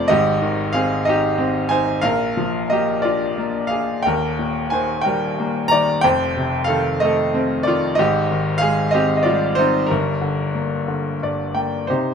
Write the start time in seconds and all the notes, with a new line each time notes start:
Already playing: F1 F2 C3 A3 C4 D#4 F4 C5 D5
0.08 G#1 G#2 G4 D#5
0.42 D#3
0.73 C4 G#4 F5
1.05 D#4 D#5
1.09 G4
1.38 C4
1.69 D#4 C5 G#5
2.01 A#1 A#2 A#4 F5
2.37 F3
2.70 A#3 G4 D#5
3.02 D4 F4 D5
3.38 A#3
3.67 G#4 F5
3.73 D4
4.03 D#1 A#4 G5
4.07 D#2
4.39 A#2
4.70 D#3 C5 G#5
5.01 A#4 G5
5.06 G3
5.40 A#3
5.68 D5 A#5
5.73 D#3
6.01 F1 F2 C5 G5
6.37 C3
6.64 A4 F5
6.69 D#3
7.00 A3 D#5
7.05 A4
7.34 C4
7.63 D#3 D5
7.68 F4
7.95 G#1 G#2 G4 D#5
8.31 D#3
8.58 G#4 F5
8.62 G#3
8.91 C4 G4 D#5
9.17 D#5
9.23 F4 D5
9.27 G3
9.55 C4 D#4 C5
9.86 D4 A#4
9.90 G1 G2
10.22 D3
10.54 A#3
10.88 D3
11.22 G2 D5
11.55 A#3 G5
11.87 C3 D#4 G4 C5